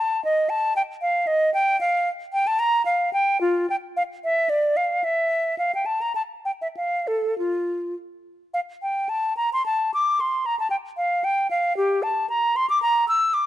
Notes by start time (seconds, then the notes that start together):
Already playing: A5
0.25 D#5
0.49 A5
0.76 G5
1.02 F5
1.27 D#5
1.54 G5
1.81 F5
2.33 G5
2.47 A5
2.59 A#5
2.85 F5
3.13 G5
3.41 F4
3.70 G5
3.97 F5
4.24 E5
4.49 D5
4.77 F5
5.04 E5
5.58 F5
5.75 G5
5.86 A5
6.02 A#5
6.15 A5
6.45 G5
6.62 E5
6.77 F5
7.07 A4
7.38 F4
8.54 F5
8.82 G5
9.09 A5
9.37 A#5
9.53 C6
9.66 A5
9.94 D6
10.20 C6
10.46 A#5
10.60 A5
10.70 G5
10.97 F5
11.24 G5
11.51 F5
11.77 G4
12.03 A5
12.30 A#5
12.56 C6
12.70 D6
12.82 A#5
13.08 E6
13.34 D6